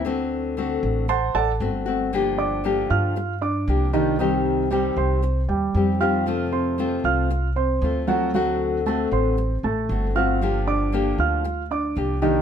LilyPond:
<<
  \new Staff \with { instrumentName = "Grand piano" } { \time 4/4 \key g \minor \tempo 4 = 116 r2 <c'' fis'' a'' c'''>8 <a' d'' fis'' a''>8 r4 | r8 <d' d'' d'''>4 <f' f'' f'''>4 <d' d'' d'''>4 <ees ees' ees''>8 | <ees ees' ees''>4 <g g' g''>8 <c' c'' c'''>4 <g g' g''>4 <f' f'' f'''>8~ | <f' f'' f'''>8 <c' c'' c'''>4 <f' f'' f'''>4 <c' c'' c'''>4 <fis fis' fis''>8 |
<fis fis' fis''>4 <a a' a''>8 <c' c'' c'''>4 <a a' a''>4 <f' f'' f'''>8~ | <f' f'' f'''>8 <d' d'' d'''>4 <f' f'' f'''>4 <d' d'' d'''>4 <ees ees' ees''>8 | }
  \new Staff \with { instrumentName = "Nylon-string guitar" } { \time 4/4 \key g \minor <d a c' fis'>4 <d a c' fis'>4 r4 <d a c' fis'>8 <a c' fis'>8 | <d f bes d' g'>4 <d f bes d' g'>4 r4 <f bes d' g'>8 <f bes d' g'>8 | <c ees g c' g'>4 <c ees g c' g'>4 r4 <ees g c' g'>8 <ees g c' g'>8 | <c f a c' f'>4 <c f a c' f'>4 r4 <f a c' f'>8 <f a c' f'>8 |
<d a c' fis'>4 <d a c' fis'>4 r4 <d a c' fis'>8 <a c' fis'>8 | <d f bes d' g'>4 <d f bes d' g'>4 r4 <f bes d' g'>8 <f bes d' g'>8 | }
  \new Staff \with { instrumentName = "Upright bass" } { \clef bass \time 4/4 \key g \minor d,4. a,,4 a,,8 g,,4~ | g,,4. g,4. c,4~ | c,4. c,4 ees,8 f,4~ | f,4. c,4. d,4~ |
d,4. a,,4 a,,8 g,,4~ | g,,4. d,4. c,4 | }
>>